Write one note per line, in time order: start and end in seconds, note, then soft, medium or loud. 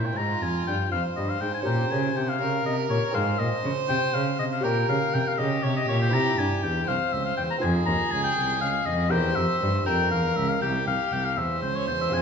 0.00 0.14 A#2 medium
0.00 0.16 A#2 medium
0.00 0.11 C4 medium
0.00 0.11 E4 medium
0.00 0.19 E4 medium
0.00 0.12 G4 medium
0.05 0.18 G5 medium
0.13 1.60 C4 medium
0.13 1.61 F4 soft
0.13 1.62 C5 medium
0.13 0.44 A#5 loud
0.17 0.41 G#2 medium
0.17 0.40 G#2 medium
0.17 0.93 F4 medium
0.42 0.67 F2 medium
0.42 0.65 F2 medium
0.42 0.66 G#5 medium
0.67 0.92 G2 medium
0.67 0.90 G2 medium
0.67 0.91 G5 loud
0.92 1.00 F2 medium
0.92 1.15 F2 medium
0.92 2.38 C5 medium
0.92 1.03 F5 medium
1.16 1.41 G2 medium
1.16 1.39 G2 medium
1.16 1.31 D#5 medium
1.29 1.43 F5 medium
1.41 1.49 G#2 medium
1.41 1.64 G#2 medium
1.41 1.54 G5 loud
1.54 1.60 G#5 medium
1.62 3.09 C#4 medium
1.62 3.10 G4 soft
1.62 3.11 A#4 soft
1.66 1.89 A#2 medium
1.66 1.90 A#2 medium
1.66 1.92 G5 medium
1.91 2.15 C#3 medium
1.91 2.14 C#3 medium
1.91 2.18 G#5 loud
2.16 2.42 C3 medium
2.16 2.39 C3 medium
2.16 2.30 G5 medium
2.29 2.65 F5 loud
2.41 2.64 C#3 medium
2.41 2.63 C#3 medium
2.41 3.17 A#4 medium
2.65 2.89 C3 medium
2.65 2.88 C3 medium
2.65 2.77 D#5 medium
2.90 2.98 A#2 medium
2.90 3.13 A#2 medium
2.90 3.14 C#5 medium
3.11 3.39 G#2 medium
3.11 4.58 C4 medium
3.11 4.59 G#4 medium
3.11 4.59 C5 medium
3.11 3.40 F5 loud
3.16 3.38 G#2 medium
3.16 4.66 C5 loud
3.39 3.47 A#2 medium
3.39 3.62 A#2 medium
3.39 3.71 D#5 medium
3.64 3.72 C#3 medium
3.64 3.87 C#3 medium
3.89 3.97 C3 medium
3.89 4.12 C3 medium
3.89 4.15 G5 loud
4.14 4.39 C#3 medium
4.14 4.37 C#3 medium
4.14 4.38 F5 medium
4.39 4.61 C3 medium
4.39 4.66 C3 medium
4.39 4.45 D#5 loud
4.52 4.65 F5 medium
4.61 4.86 A#2 medium
4.61 4.88 A#2 medium
4.61 6.08 G4 medium
4.61 5.38 A#4 medium
4.61 6.08 C#5 medium
4.61 4.88 G5 loud
4.89 5.11 C#3 medium
4.89 4.97 C#3 medium
4.89 5.16 F5 loud
5.14 5.36 C3 medium
5.14 5.22 C3 medium
5.14 5.29 G5 loud
5.28 5.39 F5 loud
5.38 5.61 C#3 medium
5.38 5.63 C#3 medium
5.38 6.85 G4 loud
5.38 5.65 D#5 loud
5.63 5.86 C3 medium
5.63 5.88 C3 medium
5.63 5.76 C#5 medium
5.76 5.87 D#5 loud
5.88 6.11 A#2 medium
5.88 6.15 A#2 medium
5.88 6.00 C#5 medium
6.01 6.15 G5 loud
6.09 7.56 C4 medium
6.09 7.57 E4 medium
6.09 7.58 C5 medium
6.13 6.38 C3 medium
6.13 6.36 C3 medium
6.13 6.40 A#5 loud
6.38 6.63 G2 medium
6.38 6.61 G2 medium
6.38 6.65 G#5 loud
6.63 6.87 E2 medium
6.63 6.86 E2 medium
6.63 6.89 G5 loud
6.87 6.96 C2 medium
6.87 7.63 C5 medium
6.87 7.14 F5 loud
7.12 7.37 C#2 medium
7.12 7.25 E5 medium
7.25 7.36 F5 medium
7.37 7.45 E2 medium
7.37 7.60 E2 medium
7.37 7.43 G5 loud
7.50 7.56 A#5 loud
7.58 7.87 F2 medium
7.58 7.84 C4 medium
7.58 9.07 F4 medium
7.58 9.10 G#4 medium
7.58 9.08 C5 medium
7.58 7.73 G#5 medium
7.63 7.85 F2 medium
7.86 7.95 D#2 medium
7.86 8.10 D#2 medium
7.86 8.13 A#5 loud
8.11 8.36 C#2 medium
8.11 8.23 G#5 loud
8.23 8.60 G5 loud
8.37 8.63 C2 medium
8.61 8.86 C#2 medium
8.61 8.87 F5 loud
8.86 9.13 F2 medium
8.86 9.10 F2 medium
8.86 9.12 D#5 loud
9.08 9.36 E2 medium
9.08 12.07 C4 medium
9.08 12.08 G4 medium
9.08 12.09 A#4 medium
9.08 9.87 C5 medium
9.08 9.37 G5 loud
9.13 9.35 E2 medium
9.36 9.44 F2 medium
9.36 9.60 F2 medium
9.36 9.85 E5 loud
9.62 9.86 G2 medium
9.62 9.84 G2 medium
9.86 10.13 F2 medium
9.86 10.10 F2 medium
9.86 10.63 A#4 medium
9.86 10.11 G5 loud
10.11 10.36 E2 medium
10.11 10.35 E2 medium
10.11 10.38 F5 medium
10.36 10.61 C#2 medium
10.36 10.51 E5 loud
10.49 10.61 F5 medium
10.62 10.86 C2 medium
10.62 11.38 G4 medium
10.62 10.86 G5 loud
10.87 10.95 C2 medium
10.87 11.14 F5 loud
11.12 11.38 C2 medium
11.12 11.26 G5 loud
11.25 11.39 F5 loud
11.36 11.64 E2 medium
11.36 11.60 E2 medium
11.36 12.22 C5 medium
11.36 11.62 E5 loud
11.62 11.89 C#2 medium
11.62 11.77 C5 medium
11.76 11.87 C#5 medium
11.87 12.12 E2 medium
11.87 12.11 E2 medium
11.87 12.00 C5 loud
12.01 12.15 E5 loud
12.09 12.22 C4 medium
12.09 12.22 F4 medium
12.09 12.22 G#4 medium
12.13 12.22 F2 medium
12.13 12.22 G#5 loud